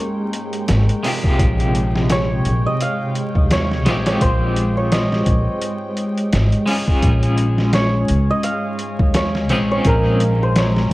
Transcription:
Already playing: G#3 A#3 C#4 F4 G#4 A#4 C#5 G5
0.33 closed hi-hat
0.53 closed hi-hat
0.68 G#1, snare, closed hi-hat
0.89 closed hi-hat
1.03 C3 G#3 F4, open hi-hat
1.08 G4
1.24 kick
1.39 A#1, kick, closed hi-hat
1.60 closed hi-hat
1.75 closed hi-hat
1.96 snare
2.10 C#5, snare, closed hi-hat
2.45 A#1, closed hi-hat
2.66 D#5
2.81 F5, closed hi-hat
3.15 closed hi-hat
3.35 D#2, kick
3.51 C#5, snare, closed hi-hat
3.71 snare
3.86 A#1 G#3 C4 F4, snare, closed hi-hat
3.91 G4
4.06 C#5, snare, closed hi-hat
4.21 A#1 C5, kick, closed hi-hat
4.56 closed hi-hat
4.77 C#5
4.92 D#5, snare, closed hi-hat
5.12 snare
5.26 A#1, kick, closed hi-hat
5.61 closed hi-hat
5.97 closed hi-hat
6.18 closed hi-hat
6.33 G#1, snare, closed hi-hat
6.52 closed hi-hat
6.66 G#3 C#4 F4, open hi-hat
6.71 G#4
6.88 kick
7.02 A#1 G#3 G#4, kick, closed hi-hat
7.23 closed hi-hat
7.37 closed hi-hat
7.58 snare
7.73 C#5, snare, closed hi-hat
8.08 C#2, closed hi-hat
8.31 D#5
8.43 F5, closed hi-hat
8.79 closed hi-hat
8.99 D#2, kick
9.14 C#5, snare, closed hi-hat
9.35 snare
9.49 A#1 C4 C#4 F4 G#4, snare, closed hi-hat
9.71 C#5
9.85 A#1 A#4, kick, closed hi-hat
10.20 closed hi-hat
10.43 C5
10.56 C#5, snare, closed hi-hat
10.76 snare

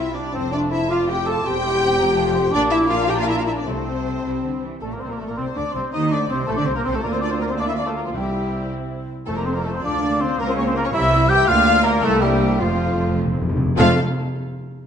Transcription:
Already playing: C2 C3 C4 E4 E5
0.14 G3 D4 E4 D5
0.32 F1 F2 C4 C5 A5
0.50 A3 D4 F4 D5
0.69 C4 E4 E5
0.89 A3 F4 F5 D6
1.09 C4 G4 G5
1.26 A3 F4 A4 A5
1.44 E1 E2 C4 G4 G5 C6
1.65 G3 E4
1.84 C4
1.98 F1 F2 C4 A#5
2.16 A3 F4 A5
2.34 C4 C6
2.51 A#1 A#2 A#3 D4 D5 D6
2.70 E4 E5
2.88 F4 F5
3.07 G4 G5 A#5
3.16 F4 F5
3.26 E4 E5
3.35 F4 F5
3.45 E4 E5
3.55 D4
3.59 D5
3.65 C2 C3 A3 C4 C5 A5
4.23 C2 C3 G3 C4
4.43 D3
4.63 E3
4.80 A1 A2 A3 A4 D5 A5
4.89 A#2 A#3 A#4 A#5
4.98 C2 C3 C4 C5 C6
5.03 C4 C5
5.07 A#2 A#3 A#4 A#5
5.12 A#3 A#4
5.17 A1 A2 A3 A4 A5
5.22 A4
5.27 A#2 A#3 A#4 A#5
5.31 A#4
5.36 C2 C3 C4 C5 C6
5.55 D2 D3 D4 D5 D6
5.72 C2 C3 C4 C5 C6
5.92 D#2 D#3 D#4 C5 D#5 D#6
6.11 D2 D3 D4 D5 D6
6.29 C2 C3 C4 C5 C6
6.46 A1 A2 A3 A4 C5 A5
6.55 D3 D4 D5 D6
6.60 D4
6.64 C2 C3 C4 C5 C6
6.75 A#2 A#3 A#4 A#5
6.84 C2 C3 C4 C5 C6
6.93 A2 A3 A4 A5
7.02 D2 A#3 F4 A#4 D5 A#5
7.12 C4 C5 C6
7.21 D4 D5 D6
7.30 C4 C5 C6
7.39 A#3 A#4 A#5
7.48 C4 C5 C6
7.57 A#3 D4 F4 D5 F5 D6
7.61 D5
7.65 E4 E5
7.69 E6
7.75 D4 D5 D6
7.84 A3 A4 A5
7.88 A4
7.94 A#3 A#4 A#5
8.03 F3 F4
8.08 F5
8.13 C2 C3 G3 C4 E4 G4 E5
8.17 G5
9.26 F1 F2 A3 F4 A4 C5 A5
9.35 A#3 A#4 A#5
9.44 C4 A4 C5 C6
9.53 A#3 A#4 A#5
9.62 A3 F4 A4 A5
9.72 C4 C5
9.76 C6
9.80 D2 D4 F4 D5 F5 D6
9.84 D2 D4
10.02 A#3 D4
10.20 C4 D4 F4 C5 C6
10.38 C#2 A#3 C#4 F4 A#4 A#5
10.47 C4 C5 C6
10.54 C#4 C#5
10.58 A#3 C#4 C#5 C#6
10.63 C4 C5
10.67 C6
10.74 A#3 C#4 F4 A#4 A#5
10.83 C#4 C#5 C#6
10.91 C2 E3 E4 G4 E5 E6
10.95 E5
11.13 G3 E4
11.28 E3 G4 G5 G6
11.47 D2 A#3 F4 D5 F5 F6
11.83 A#3 A#4 A#5
12.01 C2 A3 A#3 E4 A4 E5 A5
12.21 G3 G4 G5
12.31 D4
12.58 F1 F2 F3 A3 C4 F4 C5 F5
12.68 F2
12.76 F2
12.84 F2
13.00 F2
13.08 F2
13.17 F2
13.25 F2
13.33 F2
13.42 F2
13.49 F2
13.57 F2
13.65 F2
13.77 F1 F2 A3 C4 F4 A4 F5

